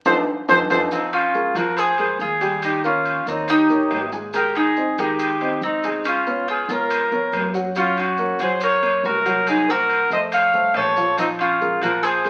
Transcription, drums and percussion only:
0.05 high timbale loud
0.05 maracas loud
0.49 high timbale loud
0.49 maracas loud
0.70 high timbale loud
0.70 maracas loud
0.91 high timbale medium
0.91 maracas medium
1.13 high timbale medium
1.13 maracas soft
1.34 maracas soft
1.55 high timbale medium
1.55 maracas medium
1.77 high timbale medium
1.77 maracas medium
1.98 high timbale medium
1.98 maracas soft
2.20 maracas soft
2.41 high timbale medium
2.41 maracas medium
2.62 high timbale medium
2.62 maracas medium
2.84 maracas soft
3.05 high timbale medium
3.05 maracas soft
3.27 maracas medium
3.48 high timbale medium
3.48 maracas medium
3.70 maracas soft
3.91 high timbale medium
3.91 low timbale medium
3.91 maracas soft
4.12 maracas medium
4.33 high timbale medium
4.33 maracas medium
4.55 high timbale medium
4.55 maracas soft
4.76 maracas soft
4.98 high timbale medium
4.98 maracas medium
5.19 high timbale medium
5.19 maracas medium
5.41 high timbale medium
5.41 maracas soft
5.62 maracas soft
5.83 high timbale medium
5.83 maracas medium
6.05 high timbale medium
6.05 maracas medium
6.26 maracas soft
6.48 high timbale medium
6.48 maracas soft
6.69 maracas medium
6.90 high timbale medium
6.90 maracas medium
7.12 maracas soft
7.33 high timbale medium
7.33 low timbale medium
7.33 maracas soft
7.54 maracas medium
7.75 high timbale medium
7.75 maracas medium
7.97 high timbale medium
7.97 maracas soft
8.17 maracas soft
8.39 high timbale medium
8.39 maracas medium
8.60 high timbale medium
8.60 maracas medium
8.83 high timbale medium
8.83 maracas soft
9.04 low timbale medium
9.04 maracas soft
9.26 high timbale medium
9.26 maracas medium
9.47 high timbale medium
9.47 maracas medium
9.69 maracas soft
9.89 high timbale medium
9.89 maracas soft
10.11 maracas medium
10.32 high timbale medium
10.32 maracas medium
10.54 maracas soft
10.74 high timbale medium
10.74 low timbale medium
10.74 maracas soft
10.96 maracas medium
11.17 high timbale medium
11.17 maracas medium
11.39 high timbale medium
11.39 maracas soft
11.61 maracas soft
11.81 high timbale medium
11.81 maracas medium
12.03 high timbale medium
12.03 maracas medium
12.24 high timbale medium
12.24 maracas soft

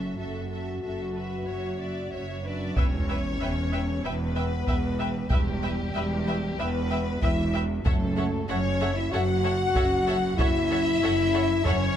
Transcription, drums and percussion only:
2.77 taiko medium
4.67 taiko medium
5.30 taiko medium
7.22 taiko medium
7.86 taiko loud
9.76 taiko medium
10.39 taiko medium
11.65 taiko low medium

